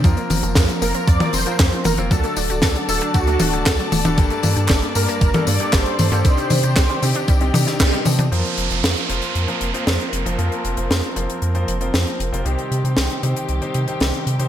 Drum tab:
HH |xxoxxxoxxxoxxxox|xxoxxxoxxxoxxxox|xxoxxxoxxxoxxxox|xxoxxxoxxxoxxxox|
TB |xxxxxxxxxxxxxxxx|xxxxxxxxxxxxxxxx|xxxxxxxxxxxxxxxx|xxxxxxxxxxxxxxxx|
CP |----x-------x---|----x-------x---|----x-------x---|----x-------x---|
SD |----o-------o---|----o-------o---|----o-------o---|----o------oo---|
T1 |--o------o----o-|----------o---oo|--o------o----o-|--o-------o---oo|
BD |o---o---o---o---|o---o---o---o---|o---o---o---o---|o---o---o---o---|

HH |xxxxxxxxxxxxxxxx|xxxxxxxxxxxxxxxx|xxxxxxxxxxxxxxxx|
TB |----------------|----------------|----------------|
CP |----------------|----------------|----------------|
SD |----o-------o---|----o-------o---|----o-------o---|
T1 |----------------|----------------|----------------|
BD |----------------|----------------|----------------|